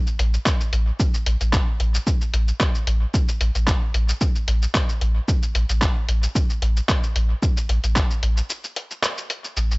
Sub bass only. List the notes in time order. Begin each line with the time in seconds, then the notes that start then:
0.19 A1
0.73 A1
1.26 A1
1.41 A1
1.80 A1
2.33 A1
2.87 A1
3.41 A1
3.55 A1
3.94 A1
4.48 A1
5.01 A1
5.55 A1
5.69 A1
6.09 A1
6.62 A1
7.16 A1
7.69 A1
7.84 A1
8.23 A1
9.57 A1